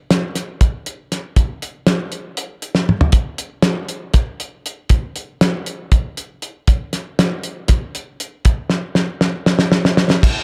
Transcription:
0.11 snare, closed hi-hat
0.35 snare, closed hi-hat
0.61 kick, closed hi-hat
0.86 closed hi-hat
1.12 snare, closed hi-hat
1.36 kick, closed hi-hat
1.62 closed hi-hat
1.87 snare, closed hi-hat
2.12 closed hi-hat
2.37 closed hi-hat
2.62 closed hi-hat
2.75 snare
2.89 mid tom
3.01 floor tom
3.12 kick, closed hi-hat
3.38 closed hi-hat
3.62 snare, closed hi-hat
3.89 closed hi-hat
4.14 kick, snare, closed hi-hat
4.40 closed hi-hat
4.66 closed hi-hat
4.89 kick, closed hi-hat
5.16 closed hi-hat
5.41 snare, closed hi-hat
5.66 closed hi-hat
5.92 kick, closed hi-hat
6.17 closed hi-hat
6.42 closed hi-hat
6.67 kick, closed hi-hat
6.93 snare, closed hi-hat
7.19 snare, closed hi-hat
7.43 closed hi-hat
7.68 kick, snare, closed hi-hat
7.95 closed hi-hat
8.20 closed hi-hat
8.45 kick, closed hi-hat
8.70 snare
8.95 snare
9.21 snare
9.46 snare
9.59 snare
9.72 snare
9.85 snare
9.97 snare
10.10 snare
10.23 kick, crash

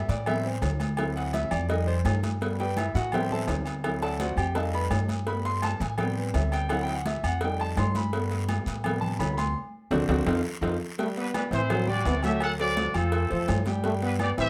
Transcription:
0.08 A2 D5, cowbell, high conga, short guiro
0.26 G3 B3 C4 E5, cowbell, high conga, low conga, low agogo, long guiro
0.44 C5, high conga
0.61 D2, cowbell, high conga, low timbale, low agogo, short guiro
0.80 cowbell, high conga, low agogo, short guiro
0.97 F#3 C4 E4, cowbell, high conga, low agogo, long guiro
1.16 F#5, cowbell, high conga
1.33 E5, cowbell, high conga, low timbale, low agogo, short guiro
1.51 F2 D5, high conga, low agogo, short guiro
1.69 G3 A3 D#4 D#5, cowbell, high conga, long guiro
1.87 C5, high conga, low agogo
2.05 G2, cowbell, high conga, low timbale, low agogo, short guiro
2.23 cowbell, high conga, short guiro
2.41 G3 A3 B3, cowbell, high conga, long guiro
2.59 G4 B4 D5 G5, cowbell, high conga
2.77 E4 E5, cowbell, high conga, low timbale, low agogo, short guiro
2.94 A2 F#4 F#5, cowbell, high conga, short guiro
3.12 G3 B3 C4 G4 C5 E5 G5, cowbell, high conga, low conga, low agogo, long guiro
3.30 A4 C5 E5 A5, high conga, low conga
3.48 D2, cowbell, high conga, low timbale, low agogo, short guiro
3.65 cowbell, low agogo, short guiro
3.84 F#3 C4 E4, cowbell, high conga, low agogo, long guiro
4.02 A4 D5 F#5 A5, cowbell, high conga
4.20 F#4 C5 D5 F#5, cowbell, high conga, low timbale, low agogo, short guiro
4.37 F2 G4 G5, high conga, low agogo, short guiro
4.55 G3 A3 D#4 A4 D#5 F5 A5, cowbell, high conga, long guiro
4.73 B4 B5, high conga, low agogo
4.90 G2, cowbell, high conga, low timbale, low agogo, short guiro
5.08 cowbell, high conga, short guiro
5.27 G3 A3 B3 B5, cowbell, high conga, long guiro
5.45 C6, cowbell, high conga
5.62 A5, cowbell, high conga, low timbale, low agogo, short guiro
5.80 A2 G#5, cowbell, high conga, short guiro
5.98 G3 B3 C4 G5, cowbell, high conga, low conga, low agogo, long guiro
6.16 B4, high conga
6.34 D2 E5, cowbell, high conga, low timbale, low agogo, short guiro
6.52 G5, cowbell, low agogo, short guiro
6.69 F#3 C4 E4 F#5, cowbell, high conga, low agogo, long guiro
6.83 G5
6.88 cowbell, high conga
6.94 F#5
7.06 E5, cowbell, high conga, low timbale, low agogo, short guiro
7.23 F2 F#5, high conga, low agogo, short guiro
7.41 G3 A3 D#4 G5, cowbell, high conga, long guiro
7.59 A5, high conga, low agogo
7.76 G2 C6, cowbell, high conga, low timbale, low agogo, short guiro
7.95 B5, cowbell, high conga, short guiro
8.13 G3 A3 B3, cowbell, long guiro
8.31 cowbell, high conga
8.49 cowbell, high conga, low timbale, low agogo, short guiro
8.66 A2, cowbell, high conga, short guiro
8.84 C3 G3 B3, cowbell, high conga, low conga, low agogo, long guiro
9.01 A5, high conga, low conga
9.19 D2 B5, cowbell, high conga, low timbale, low agogo, short guiro
9.33 B5
9.37 C6, cowbell, high conga, low agogo, short guiro
9.91 D2 C4 D4 F#4, cowbell, low conga, high timbale, long guiro
10.08 D2 C4 D4 F#4, cowbell, low conga, high timbale, long guiro
10.26 F2 C4 D#4 F4, cowbell, low conga, high timbale, long guiro
10.61 F2 C4 D#4 F4, cowbell, low conga, high timbale, long guiro
10.98 G3 A3 G4 G5, cowbell, high conga
11.17 B3 D4 B4, cowbell, high conga
11.34 B3 D4 B4 D5, cowbell, high conga, low timbale, low agogo, short guiro
11.51 A2 E3 C4 E4 C5 E5, cowbell, high conga, short guiro
11.70 F#3, cowbell, high conga, low conga, low agogo, long guiro
11.87 G3 F#4 G4 D5 G5, high conga, low conga
12.05 D2 B3 C4 C5 E5, cowbell, high conga, low timbale, low agogo, short guiro
12.23 F#3 A3 F#4 G4 E5 F#5, cowbell, high conga, low agogo, short guiro
12.40 A4 F#5, cowbell, low agogo, long guiro
12.58 F#3 A3 F#4 A4 C5 D5, cowbell, high conga
12.77 cowbell, high conga, low timbale, low agogo, short guiro
12.94 F2 F3 C4 F4 A4 F5, high conga, low agogo, short guiro
13.12 cowbell, high conga, long guiro
13.30 F2 F3 A3 A4 C5, high conga, low agogo
13.48 G2, cowbell, high conga, low timbale, low agogo, short guiro
13.65 G3 G4 G5, cowbell, high conga, short guiro
13.84 G3 A3 G4 G5, cowbell, high conga, long guiro
14.01 B3 D4 B4, cowbell, high conga
14.19 B3 G4 B4 D5, cowbell, high conga, low timbale, low agogo, short guiro
14.37 A2 E3 C4 G4 C5 E5, cowbell, high conga, short guiro

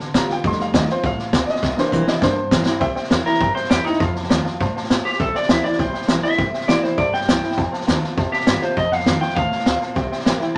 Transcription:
Already playing: D3
0.00 muted upright bass stroke
0.14 G2 G3 B3 F4 A#5, kick, snare, hi-hat pedal
0.29 B3 F4 G5, muted upright bass stroke, snare
0.44 F2 G3 A3 D#4 C6, kick, snare
0.51 snare
0.59 F5, snare
0.73 D#2 D#3 A3 C4 F4 D#5, kick, snare, hi-hat pedal
0.89 C4 F4 C5, muted upright bass stroke, snare
1.03 C2 A2 F5, kick, snare
1.18 muted upright bass stroke, snare
1.33 D2 A#2, kick, snare, hi-hat pedal
1.46 D5, muted upright bass stroke, snare
1.50 D#5
1.55 snare
1.63 C2 C3, kick, snare
1.77 E3 A#3 D4 C5, snare
1.92 A#1 E3 A#3 C4 E4, kick, hi-hat pedal
2.07 C4 E4 D#5, muted upright bass stroke, snare
2.21 G1 G2 E3 A#3 D4 C5, kick, snare
2.36 muted upright bass stroke
2.51 A1 E3 A#3 C4 E4, kick, snare, hi-hat pedal
2.66 C4 E4, muted upright bass stroke, snare
2.80 C2 C3 C5 E5 G5, kick, snare
2.95 C5 E5 G5, snare
3.03 snare
3.10 E2 E3 A#3 C4 E4 C5 E5 G5, snare, hi-hat pedal
3.25 C4 E4 A#4 C5 E5 G5, muted upright bass stroke, snare
3.34 snare
3.40 G2 C5 E5 G5, kick, snare
3.55 C5 E5 G5, snare
3.63 snare
3.69 E2 E3 A#3 C4 E4 G4 C5 E5 G5, snare, hi-hat pedal
3.84 C4 D#4 E4 C5 E5 G5, snare
3.93 snare
3.99 F2 F4 C5 F5 A5, kick, snare
4.15 C5 F5 A5, snare
4.23 snare
4.29 D#2 D#3 A3 C4 F4 C5 F5 A5, snare, hi-hat pedal
4.44 C4 F4 C5 F5 A5, snare
4.60 G2 A2 C5 F5 A5, kick, snare
4.76 C5 F5 A5, snare
4.84 snare
4.90 A2 A#2 C5 F5 A5, snare, hi-hat pedal
5.05 G4 C5 F5 C6, snare
5.12 snare
5.19 C2 C3 A4 C5 E5 G5, kick, snare
5.34 C5 D5 E5 G5, muted upright bass stroke, snare
5.42 snare
5.49 D2 E3 A#3 C4 E4 C5 E5 G5, snare, hi-hat pedal
5.64 C4 E4 C5 D5 E5 G5, snare
5.72 snare
5.79 C2 G2 C5 E5 G5, kick, snare
5.93 C5 E5 G5, muted upright bass stroke, snare
6.01 snare
6.08 A#1 E3 A#3 C4 E4 C5 E5 G5, snare, hi-hat pedal
6.23 C4 E4 C5 E5 G5, snare
6.31 snare
6.38 G1 C3 C5 E5 G5, kick, snare
6.53 C5 E5 G5, snare
6.61 snare
6.68 A1 E3 A#3 C4 E4 C5 D5 E5 G5, snare, hi-hat pedal
6.83 C4 E4 C5 E5 G5, muted upright bass stroke, snare
6.98 G2 C5 D5 E5 A5, kick, snare
7.13 C5 E5 G5, snare
7.21 snare
7.28 C2 E3 A#3 C4 E4 C5 E5 G5, snare, hi-hat pedal
7.43 C4 E4 C5 E5 G5, muted upright bass stroke, snare
7.51 snare
7.57 F2 C5 F5 A5, kick, snare
7.72 C5 F5 A5, snare
7.81 snare
7.87 D#2 D#3 A3 C4 F4 C5 F5 A5, snare, hi-hat pedal
8.02 C4 F4 C5 F5 A5, muted upright bass stroke, snare
8.17 F2 C3 C5 F5 A5, kick, snare
8.32 G4 C5 F5 A5, muted upright bass stroke, snare
8.40 snare
8.46 G2 D#3 A3 C4 F4 C5 F5, snare, hi-hat pedal
8.62 C4 F4 C5 F5 A5, snare
8.76 F2 A2 C5 D#5 F5 A5, kick, snare
8.91 C5 F5 A5, muted upright bass stroke, snare
8.99 snare
9.05 F2 D#3 A3 C4 F4 C5 F5 A5, snare, hi-hat pedal
9.21 C4 F4 C5 F5 G5 C6, muted upright bass stroke, snare
9.29 snare
9.35 D#2 A2 C5 F5 A5, kick, snare
9.51 C5 F5 A5, snare
9.59 snare
9.66 D2 A#2 C5 F5 A5, snare, hi-hat pedal
9.81 C5 F5 A5, snare
9.95 C2 C3 C5 E5 G5, kick, snare
10.11 C5 E5 G5, snare
10.19 snare
10.25 A1 E3 A#3 C4 E4 C5 E5 G5, snare, hi-hat pedal
10.40 C4 E4 C5 E5 G5, muted upright bass stroke, snare

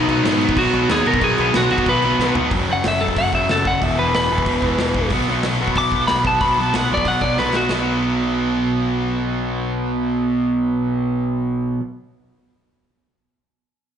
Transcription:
Already playing: B2 D#3 F#3 B3 D#4
0.07 B1 B2 F#3 B3, crash
0.23 G#2 B2 F#3 B3, snare, crash
0.39 B2 F#3 B3, crash
0.49 kick
0.54 B1 B2 D#3 F#3 B3 D#4, kick, crash
0.58 F#4
0.72 B1 B2 F#3 B3, crash
0.88 D#2 B2 F#3 B3 G#4, snare, crash
1.05 B2 F#3 B3 A#4, crash
1.14 kick
1.20 B1 B2 D#3 F#3 B3 D#4, kick, crash
1.24 G#4
1.38 B1 B2 F#3 B3, crash
1.54 B1 B2 F#3 B3 F#4, snare, crash
1.71 B1 B2 F#3 B3 F#4, crash
1.78 kick
1.85 B1 B2 D#3 F#3 B3 D#4, kick, crash
1.89 B3 B4
2.02 B1 B2 F#3 B3, crash
2.19 B1 B2 F#3, snare
2.24 B3
2.35 B1 B2 F#3 B3, floor tom
2.51 F#1 F#2, kick, open hi-hat
2.55 C#3 F#3
2.69 F#1 F#2 C#3 F#3
2.73 F#5
2.84 F#1 F#2 C#3 F#3, snare, open hi-hat
2.88 E5
3.01 F#1 F#2 C#3 F#3 A4
3.08 kick
3.17 F#1 F#2 C#3 F#3 F#5, kick, open hi-hat
3.33 F#1 F#2 C#3 F#3 E5, kick
3.49 F#1 F#2 C#3 F#3 A4, snare, open hi-hat
3.65 F#2 C#3 F#3 F#5, kick
3.82 E1 E2 B2 E3 E5, kick, open hi-hat
3.99 E1 E2 B2 E3 B4
4.14 E1 E2 B2 E3 B4, snare, open hi-hat
4.31 E1 E2 B2 E3
4.38 kick
4.46 E1 E2 B2 E3, kick, open hi-hat
4.62 E1 E2 B2 E3, kick
4.78 E1 E2 B2 E3, snare, open hi-hat
4.94 B2 E3, kick
4.99 E2
5.10 B1 B2 F#3, kick, open hi-hat
5.14 B3
5.28 B1 B2 F#3 B3
5.43 B1 B2 F#3, snare, open hi-hat
5.47 B3
5.61 B1 B2 F#3 B3
5.68 kick
5.76 B1 B2 F#3 B3 D6, kick, open hi-hat
5.92 B1 F#3 B3, kick
5.96 B2
6.07 B2 B5, snare, open hi-hat
6.12 B1 F#3 B3
6.25 B2 F#3 B3 A5, kick
6.40 B1 B2 F#3 B3 B5, kick, open hi-hat
6.58 B1 B2 F#3 B3 A5
6.73 B1 B2 F#3 B3 F#5, snare, open hi-hat
6.91 B1 B2 F#3 B3 D5
6.97 kick
7.05 B1 B2 F#3 B3 F#5, kick, open hi-hat
7.21 B1 B2 F#3 B3 D5, kick
7.37 B1 B2 F#3 B3 B4, snare
7.53 B2 F#3 B3 F#4, snare
7.69 B1 B2 F#3, snare, crash
7.74 B3

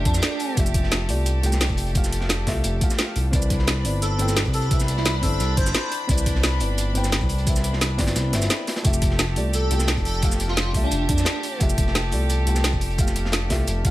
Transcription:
Already playing: A3 F4 G4 A4 D5 E5 F5 G5, downlifter
0.05 F2 D4, kick, closed hi-hat
0.14 snare, shaker
0.22 D4, snare, closed hi-hat, shaker
0.39 closed hi-hat, open hi-hat
0.55 F1 A3 F4 G4, kick, closed hi-hat, shaker
0.59 E5
0.66 shaker
0.74 kick, closed hi-hat
0.83 snare
0.92 snare, closed hi-hat, shaker
1.08 C2 A3 F4 G4 D5, closed hi-hat, open hi-hat
1.26 closed hi-hat, shaker
1.41 C2 A3 F4 G4 G5, closed hi-hat
1.52 snare, shaker
1.60 snare, closed hi-hat, shaker
1.69 F1, kick, closed hi-hat
1.77 closed hi-hat, open hi-hat
1.86 closed hi-hat
1.93 A3 F4 G4 F5, kick, closed hi-hat, shaker
2.04 snare, shaker
2.12 closed hi-hat
2.21 snare
2.29 snare, closed hi-hat, shaker
2.46 C2 A3 F4 G4 E5, kick, snare, closed hi-hat, open hi-hat
2.64 F1, closed hi-hat, shaker
2.80 A3 F4 G4 F5, kick, closed hi-hat
2.90 snare, shaker
2.99 snare, closed hi-hat, shaker
3.16 C2, closed hi-hat, open hi-hat
3.31 C2 C4 D4 E4 B4 D5 B5, kick, closed hi-hat, shaker
3.42 shaker
3.50 kick, closed hi-hat
3.59 snare
3.67 snare, closed hi-hat, shaker
3.84 G1 C4 E4 B4 D5, closed hi-hat, open hi-hat
4.02 A4, closed hi-hat, shaker
4.17 G1 C4 E4 B4 G5, closed hi-hat
4.28 snare, shaker
4.36 snare, closed hi-hat, shaker
4.45 C2, kick, closed hi-hat
4.53 A4, closed hi-hat, open hi-hat
4.62 closed hi-hat
4.69 C4 E4 B4 E5, kick, closed hi-hat, shaker
4.80 snare, shaker
4.88 closed hi-hat
4.97 E4, snare
5.06 snare, closed hi-hat, shaker
5.21 G1 C4 E4 A4 C5 D5, kick, closed hi-hat, open hi-hat
5.40 C2, closed hi-hat, shaker
5.57 G1 C5, kick, closed hi-hat
5.66 snare, shaker
5.75 snare, closed hi-hat, shaker
5.92 closed hi-hat, open hi-hat
6.07 C2 C4 E4 B4 D5, kick, closed hi-hat, shaker
6.18 shaker
6.26 kick, closed hi-hat
6.35 snare
6.43 snare, closed hi-hat, shaker
6.59 G1 C4 E4 B4 D5, closed hi-hat, open hi-hat
6.78 closed hi-hat, shaker
6.93 G1 C4 E4 B4 G5, closed hi-hat
7.04 snare, shaker
7.12 snare, closed hi-hat, shaker
7.21 C2, kick, closed hi-hat
7.29 closed hi-hat, open hi-hat
7.38 closed hi-hat
7.45 C4 E4 B4 E5, kick, closed hi-hat, shaker
7.56 snare, shaker
7.64 closed hi-hat
7.73 snare
7.81 snare, closed hi-hat, shaker
7.97 G1 C4 E4 B4 D5, kick, snare, closed hi-hat, open hi-hat
8.07 snare, closed hi-hat, shaker
8.16 C2, snare, closed hi-hat, shaker
8.31 G1 C4 E4 B4 E5, snare, closed hi-hat, shaker
8.42 snare, closed hi-hat, shaker
8.50 snare, closed hi-hat, shaker
8.67 snare, closed hi-hat, open hi-hat
8.76 snare, closed hi-hat
8.83 F1 A3 F4 G4 A4 E5, kick, closed hi-hat, shaker
8.93 shaker
9.02 kick, closed hi-hat
9.10 snare
9.19 snare, closed hi-hat, shaker
9.35 C2 A3 F4 G4 D5, closed hi-hat, open hi-hat
9.54 A4, closed hi-hat, shaker
9.69 C2 A3 F4 G4 G5, closed hi-hat
9.79 snare, shaker
9.88 snare, closed hi-hat, shaker
9.97 F1, kick, closed hi-hat
10.05 A4, closed hi-hat, open hi-hat
10.14 closed hi-hat
10.21 A3 F4 G4 F5, kick, closed hi-hat, shaker
10.31 snare, shaker
10.40 closed hi-hat
10.48 F4, snare
10.57 snare, closed hi-hat, shaker
10.72 C2 A3 F4 G4 E5, kick, closed hi-hat, open hi-hat
10.83 D4
10.91 F1, closed hi-hat, shaker
11.09 F2 D4, kick, closed hi-hat
11.18 snare, shaker
11.25 D4, snare, closed hi-hat, shaker
11.43 closed hi-hat, open hi-hat
11.59 F1 A3 F4 G4 E5, kick, closed hi-hat, shaker
11.69 shaker
11.78 kick, closed hi-hat
11.87 snare
11.95 snare, closed hi-hat, shaker
12.11 C2 A3 F4 G4 D5, closed hi-hat, open hi-hat
12.30 closed hi-hat, shaker
12.45 C2 A3 F4 G4 G5, closed hi-hat
12.55 snare, shaker
12.64 snare, closed hi-hat, shaker
12.73 F1, kick, closed hi-hat
12.81 closed hi-hat, open hi-hat
12.90 closed hi-hat
12.97 A3 F4 G4 F5, kick, closed hi-hat, shaker
13.07 snare, shaker
13.16 closed hi-hat
13.25 snare
13.32 snare, closed hi-hat, shaker
13.49 C2 A3 F4 G4 E5, kick, snare, closed hi-hat, open hi-hat
13.67 F1, closed hi-hat, shaker
13.83 A3 F4 G4 F5, kick, closed hi-hat

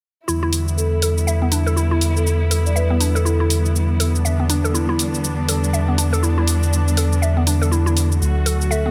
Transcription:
0.28 E2 D3 G3 B3 E4, cabasa
0.43 E4
0.53 open hi-hat, cabasa
0.68 cabasa
0.77 A4, cabasa
0.92 A4
1.02 A4, open hi-hat, cabasa
1.18 cabasa
1.27 E5, cabasa
1.42 B3
1.52 D4, open hi-hat, cabasa
1.66 A4, cabasa
1.76 E4, cabasa
1.91 E4
2.01 open hi-hat, cabasa
2.16 A4, cabasa
2.27 A4, cabasa
2.51 A4, open hi-hat, cabasa
2.66 D5, cabasa
2.76 B4 E5, cabasa
2.90 B3
3.00 D4, open hi-hat, cabasa
3.15 A4, cabasa
3.25 E4 A4, cabasa
3.40 E4 A4
3.50 open hi-hat, cabasa
3.66 cabasa
3.76 cabasa
4.00 A4, open hi-hat, cabasa
4.15 cabasa
4.25 D4 E5, cabasa
4.40 B3
4.49 D4, open hi-hat, cabasa
4.64 A4, cabasa
4.74 E4, cabasa
4.89 E4
4.99 open hi-hat, cabasa
5.14 cabasa
5.24 cabasa
5.49 A4, open hi-hat, cabasa
5.64 cabasa
5.73 E5, cabasa
5.88 B3
5.98 D4, open hi-hat, cabasa
6.13 A4, cabasa
6.23 E4, cabasa
6.38 E4
6.47 open hi-hat, cabasa
6.63 cabasa
6.73 cabasa
6.88 cabasa
6.97 A4, open hi-hat, cabasa
7.13 cabasa
7.22 E5, cabasa
7.37 B3
7.47 D4, open hi-hat, cabasa
7.62 A4, cabasa
7.71 E4, cabasa
7.86 E4, cabasa
7.97 open hi-hat, cabasa
8.12 cabasa
8.21 D2 F#3 A3 F#4, cabasa
8.46 A4, open hi-hat, cabasa
8.61 cabasa
8.71 A4 E5, cabasa
8.86 B3 A4

